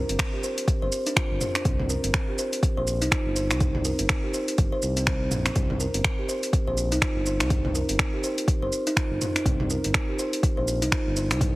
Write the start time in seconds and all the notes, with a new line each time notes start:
0.09 G1 C4, closed hi-hat, shaker
0.19 finger snap, kick, closed hi-hat, shaker
0.34 G4
0.44 C5, shaker
0.58 closed hi-hat, shaker
0.68 C4, kick, closed hi-hat, shaker
0.82 G1 C5
0.92 shaker
1.06 D4, closed hi-hat, shaker
1.16 F4, finger snap, kick, closed hi-hat, shaker
1.31 G1
1.41 C5, mid tom, shaker
1.55 D4, finger snap, closed hi-hat, shaker
1.65 C2 C4, kick, closed hi-hat, mid tom, shaker
1.79 mid tom
1.90 A#4, shaker
2.04 G1 C4, closed hi-hat, shaker
2.14 finger snap, kick, closed hi-hat, shaker
2.29 G4
2.38 C5, shaker
2.53 closed hi-hat, shaker
2.63 C4, kick, closed hi-hat, shaker
2.77 A#1 C5
2.87 shaker
3.02 C2 D#4, closed hi-hat, shaker
3.11 F4, finger snap, kick, closed hi-hat, shaker
3.26 G1
3.36 C5, shaker
3.50 C2 D#4, finger snap, closed hi-hat, shaker
3.60 C4, kick, closed hi-hat, mid tom, shaker
3.75 mid tom
3.85 A#4, shaker
3.99 G1 C4, closed hi-hat, shaker
4.09 finger snap, kick, closed hi-hat, shaker
4.24 G4
4.34 C5, shaker
4.48 closed hi-hat, shaker
4.58 G1, kick, closed hi-hat, shaker
4.72 C5
4.82 C2, shaker
4.97 C4, closed hi-hat, shaker
5.07 finger snap, kick, closed hi-hat, shaker
5.31 A#1 C4, mid tom, shaker
5.46 C4, finger snap, closed hi-hat, shaker
5.56 C2 C4, kick, closed hi-hat, mid tom, shaker
5.70 mid tom
5.80 A#4, shaker
5.94 G1 C4, closed hi-hat, shaker
6.04 finger snap, kick, closed hi-hat, shaker
6.19 G4
6.29 C5, shaker
6.43 closed hi-hat, shaker
6.53 C4, kick, closed hi-hat, shaker
6.67 A#1 C5
6.77 shaker
6.92 C2 D#4, closed hi-hat, shaker
7.02 F4, finger snap, kick, closed hi-hat, shaker
7.16 G1
7.26 C5, shaker
7.40 C2 D#4, finger snap, closed hi-hat, shaker
7.50 C4, kick, closed hi-hat, mid tom, shaker
7.65 mid tom
7.75 A#4, shaker
7.89 G1 C4, closed hi-hat, shaker
7.99 finger snap, kick, closed hi-hat, shaker
8.13 G4
8.24 C5, shaker
8.38 closed hi-hat, shaker
8.48 C4, kick, closed hi-hat, shaker
8.62 G1 C5
8.72 shaker
8.87 D#4, closed hi-hat, shaker
8.97 F4, finger snap, kick, closed hi-hat, shaker
9.11 G1
9.21 C5, mid tom, shaker
9.36 D#4, finger snap, closed hi-hat, shaker
9.46 C2 C4, kick, closed hi-hat, mid tom, shaker
9.60 mid tom
9.70 A#4, shaker
9.84 G1 C4, closed hi-hat, shaker
9.94 finger snap, kick, closed hi-hat, shaker
10.09 G4
10.19 C5, shaker
10.33 closed hi-hat, shaker
10.43 C4, kick, closed hi-hat, shaker
10.57 A#1 C5
10.68 shaker
10.82 C2 D#4, closed hi-hat, shaker
10.92 finger snap, kick, closed hi-hat, shaker
11.07 G1
11.17 C5, shaker
11.31 C2 D#4, finger snap, closed hi-hat, shaker
11.41 C4, kick, closed hi-hat, mid tom, shaker